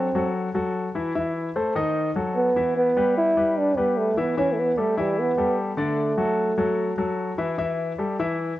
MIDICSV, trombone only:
0, 0, Header, 1, 2, 480
1, 0, Start_track
1, 0, Tempo, 402145
1, 1374, Time_signature, 4, 2, 24, 8
1, 10261, End_track
2, 0, Start_track
2, 0, Title_t, "Trombone"
2, 0, Program_c, 0, 57
2, 0, Note_on_c, 0, 60, 77
2, 366, Note_off_c, 0, 60, 0
2, 2817, Note_on_c, 0, 59, 91
2, 3262, Note_off_c, 0, 59, 0
2, 3304, Note_on_c, 0, 59, 86
2, 3747, Note_off_c, 0, 59, 0
2, 3793, Note_on_c, 0, 64, 102
2, 4275, Note_on_c, 0, 62, 90
2, 4293, Note_off_c, 0, 64, 0
2, 4516, Note_on_c, 0, 59, 86
2, 4534, Note_off_c, 0, 62, 0
2, 4739, Note_on_c, 0, 57, 80
2, 4757, Note_off_c, 0, 59, 0
2, 4998, Note_on_c, 0, 59, 80
2, 5016, Note_off_c, 0, 57, 0
2, 5226, Note_off_c, 0, 59, 0
2, 5232, Note_on_c, 0, 61, 87
2, 5402, Note_on_c, 0, 57, 60
2, 5420, Note_off_c, 0, 61, 0
2, 5480, Note_on_c, 0, 59, 81
2, 5498, Note_off_c, 0, 57, 0
2, 5727, Note_on_c, 0, 57, 78
2, 5745, Note_off_c, 0, 59, 0
2, 5948, Note_off_c, 0, 57, 0
2, 5955, Note_on_c, 0, 55, 77
2, 6197, Note_on_c, 0, 59, 88
2, 6215, Note_off_c, 0, 55, 0
2, 6666, Note_off_c, 0, 59, 0
2, 6909, Note_on_c, 0, 57, 78
2, 8293, Note_off_c, 0, 57, 0
2, 10261, End_track
0, 0, End_of_file